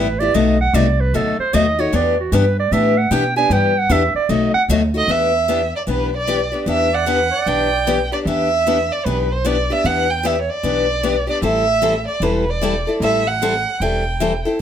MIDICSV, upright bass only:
0, 0, Header, 1, 3, 480
1, 0, Start_track
1, 0, Key_signature, 1, "minor"
1, 0, Tempo, 395778
1, 427, Time_signature, 4, 2, 24, 8
1, 17724, End_track
2, 0, Start_track
2, 0, Title_t, "Upright bass"
2, 0, Program_c, 0, 32
2, 0, Note_on_c, 0, 33, 87
2, 411, Note_off_c, 0, 33, 0
2, 424, Note_on_c, 0, 35, 82
2, 883, Note_off_c, 0, 35, 0
2, 890, Note_on_c, 0, 36, 100
2, 1362, Note_off_c, 0, 36, 0
2, 1378, Note_on_c, 0, 38, 85
2, 1664, Note_off_c, 0, 38, 0
2, 1865, Note_on_c, 0, 39, 91
2, 2329, Note_off_c, 0, 39, 0
2, 2341, Note_on_c, 0, 40, 87
2, 2806, Note_off_c, 0, 40, 0
2, 2814, Note_on_c, 0, 43, 100
2, 3282, Note_off_c, 0, 43, 0
2, 3293, Note_on_c, 0, 45, 94
2, 3761, Note_off_c, 0, 45, 0
2, 3768, Note_on_c, 0, 47, 89
2, 4238, Note_off_c, 0, 47, 0
2, 4243, Note_on_c, 0, 43, 94
2, 4714, Note_off_c, 0, 43, 0
2, 4722, Note_on_c, 0, 40, 100
2, 5012, Note_off_c, 0, 40, 0
2, 5203, Note_on_c, 0, 35, 87
2, 5492, Note_off_c, 0, 35, 0
2, 5683, Note_on_c, 0, 38, 92
2, 6148, Note_off_c, 0, 38, 0
2, 6155, Note_on_c, 0, 40, 83
2, 6930, Note_off_c, 0, 40, 0
2, 7120, Note_on_c, 0, 35, 77
2, 7893, Note_off_c, 0, 35, 0
2, 8078, Note_on_c, 0, 40, 91
2, 8852, Note_off_c, 0, 40, 0
2, 9052, Note_on_c, 0, 35, 70
2, 9820, Note_off_c, 0, 35, 0
2, 10010, Note_on_c, 0, 40, 83
2, 10779, Note_off_c, 0, 40, 0
2, 10982, Note_on_c, 0, 35, 81
2, 11747, Note_off_c, 0, 35, 0
2, 11937, Note_on_c, 0, 40, 88
2, 12704, Note_off_c, 0, 40, 0
2, 12898, Note_on_c, 0, 35, 70
2, 13665, Note_off_c, 0, 35, 0
2, 13849, Note_on_c, 0, 33, 82
2, 14621, Note_off_c, 0, 33, 0
2, 14798, Note_on_c, 0, 28, 75
2, 15575, Note_off_c, 0, 28, 0
2, 15767, Note_on_c, 0, 33, 86
2, 16542, Note_off_c, 0, 33, 0
2, 16738, Note_on_c, 0, 28, 78
2, 17509, Note_off_c, 0, 28, 0
2, 17724, End_track
3, 0, Start_track
3, 0, Title_t, "Muted upright bass strokes"
3, 1688, Note_on_c, 9, 29, 37
3, 1809, Note_off_c, 9, 29, 0
3, 5024, Note_on_c, 9, 29, 42
3, 5146, Note_off_c, 9, 29, 0
3, 5514, Note_on_c, 9, 29, 37
3, 5635, Note_off_c, 9, 29, 0
3, 17724, End_track
0, 0, End_of_file